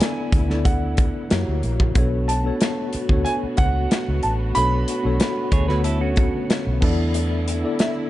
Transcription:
Already playing: string section D3 A3 B3 E4, tine electric piano B3 D4 E4 A4 D5, grand piano G#5
0.00 snare, closed hi-hat
0.32 fingered electric bass D2, kick, closed hi-hat
0.48 tine electric piano B3 D4 E4 A4, snare
0.52 tine electric piano D5
0.65 grand piano F#5, kick, closed hi-hat
0.97 kick, closed hi-hat
1.29 fingered electric bass F#2, string section E3 F#3 G3 A#3, tine electric piano A#3 E4 F#4 G4 C#5, snare, closed hi-hat
1.48 fingered electric bass D2
1.63 fingered electric bass A#1, closed hi-hat
1.80 kick
1.95 fingered electric bass B1, string section B2 A3 B3 F#4, tine electric piano B3 D4 F#4 A4 C#5, kick, closed hi-hat
2.28 grand piano A5, closed hi-hat
2.43 tine electric piano B3 D4 F#4 A4 C#5
2.61 snare, closed hi-hat
2.93 muted fingered electric bass stroke, closed hi-hat
3.09 fingered electric bass D2, tine electric piano B3 D4 F#4 A4, kick
3.13 tine electric piano C#5
3.25 grand piano G#5, closed hi-hat
3.43 muted fingered electric bass stroke
3.57 fingered electric bass C#2, grand piano F#5, kick, closed hi-hat
3.91 snare, closed hi-hat
4.08 fingered electric bass C#2
4.23 fingered electric bass A1, grand piano A5, closed hi-hat
4.54 fingered electric bass B1, tine electric piano B3 D4 F#4 A4, grand piano B5, closed hi-hat
4.58 tine electric piano C#5
4.88 closed hi-hat
5.03 fingered electric bass B1, tine electric piano B3 D4 F#4 A4 C#5
5.20 snare, closed hi-hat
5.52 fingered electric bass D2, clean electric guitar G#4 C#5, kick, closed hi-hat
5.68 tine electric piano D3 B3 F#4 A4 C#5, clean electric guitar F#4 B4, snare
5.84 clean electric guitar E4 A4, closed hi-hat
6.01 clean electric guitar C#4 F#4
6.16 kick, closed hi-hat
6.50 snare, closed hi-hat
6.67 fingered electric bass B1
6.81 fingered electric bass E2, string section D3 E4, tine electric piano B3 D4 E4 A4 D5, kick, crash
7.14 closed hi-hat
7.48 closed hi-hat
7.62 tine electric piano B3 D4 E4 A4 D5
7.79 grand piano E5, snare, closed hi-hat

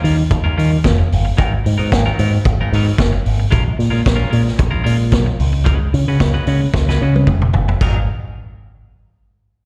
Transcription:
0.03 picked electric bass D#3, clean electric guitar G3 C#4 F4 A#4, open hi-hat
0.18 muted clean electric guitar stroke
0.30 picked electric bass D#2, muted clean electric guitar stroke, kick, closed hi-hat
0.44 picked electric bass D#2, clean electric guitar G3 C#4 F4 A#4
0.57 picked electric bass D#3, clean electric guitar G3 C#4 F4 A#4, open hi-hat
0.72 muted clean electric guitar stroke
0.84 picked electric bass F1, muted clean electric guitar stroke, kick, snare, closed hi-hat
0.98 muted clean electric guitar stroke
1.12 picked electric bass G1, open hi-hat
1.25 muted clean electric guitar stroke
1.37 picked electric bass G#1, clean electric guitar F#3 B3 D#4 A#4, kick, closed hi-hat
1.54 muted clean electric guitar stroke
1.64 picked electric bass G#2, muted clean electric guitar stroke, open hi-hat
1.78 picked electric bass G#2, clean electric guitar F#3 B3 D#4 A#4
1.92 picked electric bass G#1, kick, snare, closed hi-hat
2.06 clean electric guitar F#3 B3 D#4 A#4
2.18 picked electric bass G#2, clean electric guitar F#3 B3 D#4 A#4, open hi-hat
2.33 muted clean electric guitar stroke
2.45 picked electric bass G#1, muted clean electric guitar stroke, kick, closed hi-hat
2.60 picked electric bass G#1, clean electric guitar F#3 B3 D#4 A#4
2.72 picked electric bass G#2, clean electric guitar F#3 B3 D#4 A#4, open hi-hat
2.87 muted clean electric guitar stroke
2.98 picked electric bass F#1, muted clean electric guitar stroke, kick, snare, closed hi-hat
3.13 muted clean electric guitar stroke
3.26 picked electric bass G#1, open hi-hat
3.40 muted clean electric guitar stroke
3.51 picked electric bass A#1, clean electric guitar G#3 C#4 F4 A#4, kick, closed hi-hat
3.65 muted clean electric guitar stroke
3.77 picked electric bass A#2, muted clean electric guitar stroke, open hi-hat
3.90 picked electric bass A#2, clean electric guitar G#3 C#4 F4 A#4
4.02 muted clean electric guitar stroke, kick
4.07 picked electric bass A#1, snare, closed hi-hat
4.16 clean electric guitar G#3 C#4 F4 A#4
4.30 picked electric bass A#2, clean electric guitar G#3 C#4 F4 A#4, open hi-hat
4.43 muted clean electric guitar stroke
4.48 snare
4.57 picked electric bass A#1, muted clean electric guitar stroke, kick, closed hi-hat
4.71 picked electric bass A#1, clean electric guitar G#3 C#4 F4 A#4
4.83 picked electric bass A#2, clean electric guitar G#3 C#4 F4 A#4, open hi-hat
4.98 muted clean electric guitar stroke
5.11 picked electric bass B1, muted clean electric guitar stroke, kick, snare, closed hi-hat
5.26 muted clean electric guitar stroke
5.40 picked electric bass C#2, open hi-hat
5.53 muted clean electric guitar stroke
5.64 clean electric guitar G#3 C#4 F#4 B4, kick, closed hi-hat
5.80 muted clean electric guitar stroke
5.93 picked electric bass C#3, muted clean electric guitar stroke, open hi-hat
6.08 picked electric bass C#3, clean electric guitar G#3 C#4 F#4 B4
6.20 picked electric bass C#2, kick, snare, closed hi-hat
6.34 clean electric guitar G#3 C#4 F#4 B4
6.47 picked electric bass C#3, clean electric guitar G#3 C#4 F#4 B4, open hi-hat
6.62 muted clean electric guitar stroke
6.74 picked electric bass C#2, muted clean electric guitar stroke, kick, snare
6.88 picked electric bass C#2, clean electric guitar G#3 C#4 F#4 B4, snare
7.01 picked electric bass C#3, clean electric guitar G#3 C#4 F#4 B4
7.15 muted clean electric guitar stroke, high tom
7.27 picked electric bass F1, muted clean electric guitar stroke, kick, mid tom
7.42 muted clean electric guitar stroke, mid tom
7.54 picked electric bass F#1, floor tom
7.68 muted clean electric guitar stroke, floor tom
7.81 picked electric bass G#1, clean electric guitar F#3 B3 D#4 A#4, kick, crash

